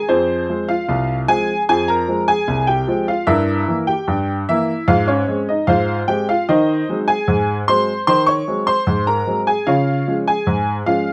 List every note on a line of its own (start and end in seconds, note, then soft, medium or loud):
0.09 0.43 F2 medium
0.09 0.49 C4 medium
0.09 0.66 G#4 medium
0.09 0.66 C5 medium
0.49 0.71 F3 medium
0.49 0.72 G#3 medium
0.49 0.72 C4 medium
0.69 1.26 F4 medium
0.69 1.17 F5 medium
0.89 1.23 C2 medium
1.28 1.51 F3 medium
1.28 1.51 G#3 medium
1.28 1.51 C4 medium
1.28 1.67 G#4 medium
1.28 1.61 G#5 loud
1.69 2.03 F2 medium
1.69 1.88 G#4 medium
1.69 1.89 G#5 loud
1.88 2.27 A#4 medium
1.88 2.20 A#5 medium
2.08 2.30 F3 medium
2.08 2.30 G#3 medium
2.08 2.31 C4 medium
2.28 2.66 G#4 medium
2.28 2.66 G#5 loud
2.48 2.82 C2 medium
2.67 3.06 G4 medium
2.67 3.06 G5 loud
2.87 3.10 F3 medium
2.87 3.10 G#3 medium
2.87 3.10 C4 medium
3.08 3.27 F4 medium
3.08 3.28 F5 medium
3.27 3.61 G2 loud
3.27 3.84 E4 medium
3.27 3.84 A#4 medium
3.27 3.75 E5 loud
3.68 3.90 E3 medium
3.68 3.90 A#3 medium
3.87 4.44 G4 medium
3.87 4.35 G5 loud
4.08 4.42 G2 medium
4.49 4.70 E3 medium
4.49 4.71 A#3 medium
4.49 4.86 E4 medium
4.49 4.86 E5 loud
4.88 5.21 G#2 medium
4.88 5.07 F4 medium
4.88 5.07 F5 loud
5.08 5.45 C#4 medium
5.08 5.39 C#5 medium
5.28 5.50 G#3 medium
5.28 5.50 C4 medium
5.49 5.67 D#4 medium
5.49 5.68 D#5 medium
5.67 6.01 G#2 medium
5.67 6.05 F4 medium
5.67 6.05 C5 medium
5.67 5.99 F5 loud
6.08 6.30 G#3 medium
6.08 6.30 C4 medium
6.08 6.27 G4 medium
6.08 6.27 G5 loud
6.29 6.47 F4 medium
6.29 6.48 F5 loud
6.49 6.82 D#3 medium
6.49 7.05 D#4 medium
6.49 7.05 C5 medium
6.49 6.96 D#5 loud
6.89 7.11 F#3 medium
6.89 7.11 G#3 medium
6.89 7.11 C4 medium
7.08 7.64 G#4 medium
7.08 7.55 G#5 loud
7.28 7.61 G#2 medium
7.68 7.90 F#3 medium
7.68 7.90 G#3 medium
7.68 7.91 C4 medium
7.68 8.05 C5 medium
7.68 8.00 C6 loud
8.07 8.41 D#3 medium
8.07 8.27 C5 medium
8.07 8.27 C6 loud
8.27 8.65 C#5 medium
8.27 8.64 C#6 loud
8.47 8.69 F#3 medium
8.47 8.69 G#3 medium
8.47 8.70 C4 medium
8.67 9.04 C5 medium
8.67 9.04 C6 loud
8.87 9.20 G#2 medium
9.07 9.44 A#4 medium
9.07 9.39 A#5 loud
9.27 9.49 F#3 medium
9.27 9.49 G#3 medium
9.27 9.49 C4 medium
9.47 9.66 G#4 medium
9.47 9.67 G#5 medium
9.67 10.00 C#3 medium
9.67 10.23 F4 medium
9.67 10.23 C#5 medium
9.67 10.14 F5 loud
10.07 10.29 F3 soft
10.07 10.29 G#3 soft
10.07 10.29 C#4 medium
10.28 10.83 G#4 medium
10.28 10.75 G#5 medium
10.47 10.80 G#2 medium
10.86 11.08 F3 medium
10.86 11.09 G#3 soft
10.86 11.09 C#4 medium
10.86 11.13 F4 medium
10.86 11.13 F5 loud